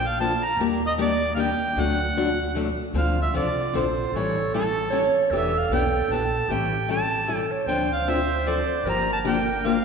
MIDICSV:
0, 0, Header, 1, 5, 480
1, 0, Start_track
1, 0, Key_signature, -1, "minor"
1, 0, Tempo, 393443
1, 716, Time_signature, 3, 2, 24, 8
1, 12015, End_track
2, 0, Start_track
2, 0, Title_t, "Harmonica"
2, 0, Program_c, 0, 22
2, 90, Note_on_c, 0, 77, 85
2, 244, Note_off_c, 0, 77, 0
2, 252, Note_on_c, 0, 81, 88
2, 547, Note_on_c, 0, 82, 93
2, 565, Note_off_c, 0, 81, 0
2, 725, Note_off_c, 0, 82, 0
2, 1059, Note_on_c, 0, 75, 85
2, 1132, Note_off_c, 0, 75, 0
2, 1236, Note_on_c, 0, 74, 89
2, 1602, Note_off_c, 0, 74, 0
2, 1643, Note_on_c, 0, 77, 69
2, 1708, Note_on_c, 0, 79, 80
2, 1726, Note_off_c, 0, 77, 0
2, 2199, Note_on_c, 0, 78, 82
2, 2217, Note_off_c, 0, 79, 0
2, 3136, Note_off_c, 0, 78, 0
2, 3635, Note_on_c, 0, 77, 73
2, 3889, Note_off_c, 0, 77, 0
2, 3932, Note_on_c, 0, 76, 72
2, 4085, Note_off_c, 0, 76, 0
2, 4106, Note_on_c, 0, 74, 77
2, 4537, Note_off_c, 0, 74, 0
2, 4599, Note_on_c, 0, 72, 73
2, 5077, Note_on_c, 0, 73, 82
2, 5095, Note_off_c, 0, 72, 0
2, 5536, Note_off_c, 0, 73, 0
2, 5545, Note_on_c, 0, 69, 76
2, 6255, Note_off_c, 0, 69, 0
2, 6515, Note_on_c, 0, 76, 84
2, 6809, Note_on_c, 0, 77, 80
2, 6827, Note_off_c, 0, 76, 0
2, 6975, Note_off_c, 0, 77, 0
2, 6996, Note_on_c, 0, 79, 84
2, 7467, Note_on_c, 0, 81, 79
2, 7485, Note_off_c, 0, 79, 0
2, 7959, Note_on_c, 0, 79, 81
2, 7977, Note_off_c, 0, 81, 0
2, 8417, Note_off_c, 0, 79, 0
2, 8438, Note_on_c, 0, 81, 87
2, 8987, Note_off_c, 0, 81, 0
2, 8987, Note_on_c, 0, 79, 87
2, 9142, Note_off_c, 0, 79, 0
2, 9375, Note_on_c, 0, 79, 86
2, 9683, Note_on_c, 0, 77, 81
2, 9701, Note_off_c, 0, 79, 0
2, 9879, Note_on_c, 0, 76, 84
2, 9897, Note_off_c, 0, 77, 0
2, 10350, Note_on_c, 0, 74, 77
2, 10368, Note_off_c, 0, 76, 0
2, 10814, Note_off_c, 0, 74, 0
2, 10850, Note_on_c, 0, 82, 91
2, 11099, Note_off_c, 0, 82, 0
2, 11136, Note_on_c, 0, 81, 90
2, 11210, Note_off_c, 0, 81, 0
2, 11315, Note_on_c, 0, 79, 86
2, 11792, Note_on_c, 0, 77, 79
2, 11811, Note_off_c, 0, 79, 0
2, 12015, Note_off_c, 0, 77, 0
2, 12015, End_track
3, 0, Start_track
3, 0, Title_t, "Clarinet"
3, 0, Program_c, 1, 71
3, 3596, Note_on_c, 1, 65, 80
3, 4986, Note_off_c, 1, 65, 0
3, 5036, Note_on_c, 1, 69, 88
3, 5946, Note_off_c, 1, 69, 0
3, 5981, Note_on_c, 1, 73, 98
3, 6478, Note_on_c, 1, 69, 94
3, 6496, Note_off_c, 1, 73, 0
3, 7913, Note_on_c, 1, 67, 79
3, 7932, Note_off_c, 1, 69, 0
3, 8580, Note_off_c, 1, 67, 0
3, 8865, Note_on_c, 1, 69, 85
3, 9166, Note_on_c, 1, 73, 78
3, 9185, Note_off_c, 1, 69, 0
3, 9345, Note_on_c, 1, 72, 98
3, 9363, Note_off_c, 1, 73, 0
3, 10806, Note_on_c, 1, 70, 90
3, 10824, Note_off_c, 1, 72, 0
3, 12015, Note_off_c, 1, 70, 0
3, 12015, End_track
4, 0, Start_track
4, 0, Title_t, "Steel-string acoustic guitar"
4, 0, Program_c, 2, 25
4, 244, Note_on_c, 2, 53, 81
4, 248, Note_on_c, 2, 50, 76
4, 253, Note_on_c, 2, 58, 82
4, 259, Note_on_c, 2, 62, 80
4, 264, Note_on_c, 2, 69, 84
4, 374, Note_off_c, 2, 53, 0
4, 376, Note_off_c, 2, 50, 0
4, 378, Note_off_c, 2, 58, 0
4, 381, Note_off_c, 2, 62, 0
4, 384, Note_off_c, 2, 69, 0
4, 719, Note_on_c, 2, 51, 66
4, 728, Note_on_c, 2, 55, 61
4, 735, Note_on_c, 2, 58, 71
4, 735, Note_on_c, 2, 62, 71
4, 742, Note_on_c, 2, 67, 68
4, 970, Note_off_c, 2, 51, 0
4, 974, Note_off_c, 2, 55, 0
4, 978, Note_off_c, 2, 58, 0
4, 978, Note_off_c, 2, 62, 0
4, 981, Note_off_c, 2, 67, 0
4, 1197, Note_on_c, 2, 55, 78
4, 1201, Note_on_c, 2, 51, 80
4, 1205, Note_on_c, 2, 58, 91
4, 1209, Note_on_c, 2, 67, 85
4, 1211, Note_on_c, 2, 62, 87
4, 1330, Note_off_c, 2, 55, 0
4, 1332, Note_off_c, 2, 51, 0
4, 1334, Note_off_c, 2, 58, 0
4, 1336, Note_off_c, 2, 67, 0
4, 1337, Note_off_c, 2, 62, 0
4, 1666, Note_on_c, 2, 51, 82
4, 1666, Note_on_c, 2, 55, 83
4, 1667, Note_on_c, 2, 62, 78
4, 1672, Note_on_c, 2, 58, 77
4, 1681, Note_on_c, 2, 67, 88
4, 1804, Note_off_c, 2, 51, 0
4, 1804, Note_off_c, 2, 55, 0
4, 1805, Note_off_c, 2, 62, 0
4, 1807, Note_off_c, 2, 58, 0
4, 1812, Note_off_c, 2, 67, 0
4, 2158, Note_on_c, 2, 50, 63
4, 2160, Note_on_c, 2, 54, 71
4, 2166, Note_on_c, 2, 62, 67
4, 2167, Note_on_c, 2, 57, 68
4, 2171, Note_on_c, 2, 66, 68
4, 2409, Note_off_c, 2, 50, 0
4, 2410, Note_off_c, 2, 54, 0
4, 2413, Note_off_c, 2, 62, 0
4, 2414, Note_off_c, 2, 57, 0
4, 2415, Note_off_c, 2, 66, 0
4, 2646, Note_on_c, 2, 50, 77
4, 2650, Note_on_c, 2, 54, 83
4, 2653, Note_on_c, 2, 57, 83
4, 2653, Note_on_c, 2, 62, 95
4, 2659, Note_on_c, 2, 66, 84
4, 2774, Note_off_c, 2, 50, 0
4, 2776, Note_off_c, 2, 54, 0
4, 2777, Note_off_c, 2, 62, 0
4, 2778, Note_off_c, 2, 57, 0
4, 2781, Note_off_c, 2, 66, 0
4, 3111, Note_on_c, 2, 50, 76
4, 3123, Note_on_c, 2, 54, 78
4, 3130, Note_on_c, 2, 57, 73
4, 3130, Note_on_c, 2, 62, 85
4, 3138, Note_on_c, 2, 66, 84
4, 3247, Note_off_c, 2, 50, 0
4, 3252, Note_off_c, 2, 54, 0
4, 3256, Note_off_c, 2, 57, 0
4, 3256, Note_off_c, 2, 62, 0
4, 3260, Note_off_c, 2, 66, 0
4, 3591, Note_on_c, 2, 50, 63
4, 3597, Note_on_c, 2, 60, 66
4, 3602, Note_on_c, 2, 53, 69
4, 3602, Note_on_c, 2, 62, 64
4, 3603, Note_on_c, 2, 69, 68
4, 3845, Note_off_c, 2, 50, 0
4, 3848, Note_off_c, 2, 60, 0
4, 3851, Note_off_c, 2, 53, 0
4, 3851, Note_off_c, 2, 62, 0
4, 3851, Note_off_c, 2, 69, 0
4, 4069, Note_on_c, 2, 50, 65
4, 4078, Note_on_c, 2, 60, 77
4, 4080, Note_on_c, 2, 62, 85
4, 4081, Note_on_c, 2, 53, 75
4, 4094, Note_on_c, 2, 69, 85
4, 4205, Note_off_c, 2, 50, 0
4, 4210, Note_off_c, 2, 60, 0
4, 4211, Note_off_c, 2, 53, 0
4, 4211, Note_off_c, 2, 62, 0
4, 4218, Note_off_c, 2, 69, 0
4, 4555, Note_on_c, 2, 50, 72
4, 4564, Note_on_c, 2, 53, 73
4, 4574, Note_on_c, 2, 60, 75
4, 4575, Note_on_c, 2, 62, 72
4, 4575, Note_on_c, 2, 69, 85
4, 4688, Note_off_c, 2, 50, 0
4, 4693, Note_off_c, 2, 53, 0
4, 4697, Note_off_c, 2, 60, 0
4, 4698, Note_off_c, 2, 62, 0
4, 4698, Note_off_c, 2, 69, 0
4, 5067, Note_on_c, 2, 52, 70
4, 5075, Note_on_c, 2, 55, 70
4, 5076, Note_on_c, 2, 61, 61
4, 5081, Note_on_c, 2, 64, 68
4, 5090, Note_on_c, 2, 69, 65
4, 5303, Note_off_c, 2, 52, 0
4, 5307, Note_off_c, 2, 55, 0
4, 5308, Note_off_c, 2, 61, 0
4, 5310, Note_off_c, 2, 64, 0
4, 5315, Note_off_c, 2, 69, 0
4, 5540, Note_on_c, 2, 52, 72
4, 5540, Note_on_c, 2, 61, 85
4, 5543, Note_on_c, 2, 55, 79
4, 5544, Note_on_c, 2, 64, 78
4, 5551, Note_on_c, 2, 69, 84
4, 5661, Note_off_c, 2, 52, 0
4, 5661, Note_off_c, 2, 61, 0
4, 5662, Note_off_c, 2, 55, 0
4, 5663, Note_off_c, 2, 64, 0
4, 5667, Note_off_c, 2, 69, 0
4, 6004, Note_on_c, 2, 52, 74
4, 6006, Note_on_c, 2, 61, 75
4, 6009, Note_on_c, 2, 55, 73
4, 6013, Note_on_c, 2, 69, 83
4, 6015, Note_on_c, 2, 64, 81
4, 6133, Note_off_c, 2, 52, 0
4, 6134, Note_off_c, 2, 61, 0
4, 6135, Note_off_c, 2, 55, 0
4, 6137, Note_off_c, 2, 69, 0
4, 6138, Note_off_c, 2, 64, 0
4, 6492, Note_on_c, 2, 52, 61
4, 6496, Note_on_c, 2, 59, 73
4, 6497, Note_on_c, 2, 62, 64
4, 6504, Note_on_c, 2, 67, 74
4, 6736, Note_off_c, 2, 52, 0
4, 6738, Note_off_c, 2, 59, 0
4, 6739, Note_off_c, 2, 62, 0
4, 6742, Note_off_c, 2, 67, 0
4, 6972, Note_on_c, 2, 52, 77
4, 6979, Note_on_c, 2, 59, 77
4, 6987, Note_on_c, 2, 62, 81
4, 6990, Note_on_c, 2, 67, 79
4, 7097, Note_off_c, 2, 52, 0
4, 7101, Note_off_c, 2, 59, 0
4, 7105, Note_off_c, 2, 62, 0
4, 7106, Note_off_c, 2, 67, 0
4, 7462, Note_on_c, 2, 52, 71
4, 7468, Note_on_c, 2, 59, 79
4, 7474, Note_on_c, 2, 62, 83
4, 7482, Note_on_c, 2, 67, 85
4, 7582, Note_off_c, 2, 52, 0
4, 7585, Note_off_c, 2, 59, 0
4, 7588, Note_off_c, 2, 62, 0
4, 7592, Note_off_c, 2, 67, 0
4, 7933, Note_on_c, 2, 52, 59
4, 7934, Note_on_c, 2, 55, 62
4, 7944, Note_on_c, 2, 61, 66
4, 7944, Note_on_c, 2, 64, 64
4, 7948, Note_on_c, 2, 69, 63
4, 8177, Note_off_c, 2, 52, 0
4, 8177, Note_off_c, 2, 55, 0
4, 8182, Note_off_c, 2, 61, 0
4, 8182, Note_off_c, 2, 64, 0
4, 8185, Note_off_c, 2, 69, 0
4, 8396, Note_on_c, 2, 52, 69
4, 8401, Note_on_c, 2, 55, 77
4, 8408, Note_on_c, 2, 61, 80
4, 8410, Note_on_c, 2, 64, 85
4, 8416, Note_on_c, 2, 69, 87
4, 8530, Note_off_c, 2, 52, 0
4, 8532, Note_off_c, 2, 55, 0
4, 8536, Note_off_c, 2, 61, 0
4, 8537, Note_off_c, 2, 64, 0
4, 8540, Note_off_c, 2, 69, 0
4, 8878, Note_on_c, 2, 52, 71
4, 8879, Note_on_c, 2, 55, 79
4, 8890, Note_on_c, 2, 61, 67
4, 8890, Note_on_c, 2, 64, 73
4, 8898, Note_on_c, 2, 69, 77
4, 9011, Note_off_c, 2, 52, 0
4, 9011, Note_off_c, 2, 55, 0
4, 9017, Note_off_c, 2, 61, 0
4, 9017, Note_off_c, 2, 64, 0
4, 9021, Note_off_c, 2, 69, 0
4, 9368, Note_on_c, 2, 50, 61
4, 9372, Note_on_c, 2, 62, 69
4, 9375, Note_on_c, 2, 69, 66
4, 9377, Note_on_c, 2, 53, 64
4, 9382, Note_on_c, 2, 60, 68
4, 9615, Note_off_c, 2, 50, 0
4, 9617, Note_off_c, 2, 62, 0
4, 9618, Note_off_c, 2, 69, 0
4, 9619, Note_off_c, 2, 53, 0
4, 9622, Note_off_c, 2, 60, 0
4, 9848, Note_on_c, 2, 50, 69
4, 9852, Note_on_c, 2, 53, 76
4, 9855, Note_on_c, 2, 60, 72
4, 9856, Note_on_c, 2, 62, 84
4, 9857, Note_on_c, 2, 69, 83
4, 9976, Note_off_c, 2, 50, 0
4, 9978, Note_off_c, 2, 53, 0
4, 9979, Note_off_c, 2, 60, 0
4, 9980, Note_off_c, 2, 62, 0
4, 9981, Note_off_c, 2, 69, 0
4, 10321, Note_on_c, 2, 50, 72
4, 10328, Note_on_c, 2, 53, 75
4, 10333, Note_on_c, 2, 60, 78
4, 10335, Note_on_c, 2, 62, 75
4, 10342, Note_on_c, 2, 69, 85
4, 10453, Note_off_c, 2, 50, 0
4, 10456, Note_off_c, 2, 53, 0
4, 10459, Note_off_c, 2, 60, 0
4, 10460, Note_off_c, 2, 62, 0
4, 10463, Note_off_c, 2, 69, 0
4, 10810, Note_on_c, 2, 50, 62
4, 10814, Note_on_c, 2, 53, 69
4, 10819, Note_on_c, 2, 67, 69
4, 10821, Note_on_c, 2, 58, 65
4, 10824, Note_on_c, 2, 62, 73
4, 11057, Note_off_c, 2, 50, 0
4, 11059, Note_off_c, 2, 53, 0
4, 11061, Note_off_c, 2, 67, 0
4, 11062, Note_off_c, 2, 58, 0
4, 11063, Note_off_c, 2, 62, 0
4, 11278, Note_on_c, 2, 58, 84
4, 11279, Note_on_c, 2, 50, 73
4, 11279, Note_on_c, 2, 53, 73
4, 11282, Note_on_c, 2, 62, 84
4, 11287, Note_on_c, 2, 67, 88
4, 11412, Note_off_c, 2, 50, 0
4, 11412, Note_off_c, 2, 53, 0
4, 11412, Note_off_c, 2, 58, 0
4, 11414, Note_off_c, 2, 62, 0
4, 11416, Note_off_c, 2, 67, 0
4, 11766, Note_on_c, 2, 50, 77
4, 11770, Note_on_c, 2, 53, 72
4, 11774, Note_on_c, 2, 58, 77
4, 11775, Note_on_c, 2, 67, 80
4, 11777, Note_on_c, 2, 62, 76
4, 11896, Note_off_c, 2, 50, 0
4, 11898, Note_off_c, 2, 53, 0
4, 11900, Note_off_c, 2, 58, 0
4, 11900, Note_off_c, 2, 67, 0
4, 11902, Note_off_c, 2, 62, 0
4, 12015, End_track
5, 0, Start_track
5, 0, Title_t, "Upright bass"
5, 0, Program_c, 3, 32
5, 0, Note_on_c, 3, 34, 86
5, 422, Note_off_c, 3, 34, 0
5, 699, Note_on_c, 3, 39, 89
5, 1857, Note_off_c, 3, 39, 0
5, 2148, Note_on_c, 3, 38, 90
5, 3302, Note_off_c, 3, 38, 0
5, 3583, Note_on_c, 3, 38, 83
5, 3971, Note_off_c, 3, 38, 0
5, 4080, Note_on_c, 3, 36, 74
5, 4485, Note_off_c, 3, 36, 0
5, 4560, Note_on_c, 3, 34, 64
5, 4966, Note_off_c, 3, 34, 0
5, 5030, Note_on_c, 3, 33, 80
5, 6184, Note_off_c, 3, 33, 0
5, 6467, Note_on_c, 3, 28, 86
5, 6854, Note_off_c, 3, 28, 0
5, 6943, Note_on_c, 3, 35, 74
5, 7356, Note_off_c, 3, 35, 0
5, 7421, Note_on_c, 3, 34, 69
5, 7835, Note_off_c, 3, 34, 0
5, 7909, Note_on_c, 3, 33, 84
5, 9064, Note_off_c, 3, 33, 0
5, 9350, Note_on_c, 3, 38, 81
5, 10505, Note_off_c, 3, 38, 0
5, 10782, Note_on_c, 3, 31, 80
5, 11941, Note_off_c, 3, 31, 0
5, 12015, End_track
0, 0, End_of_file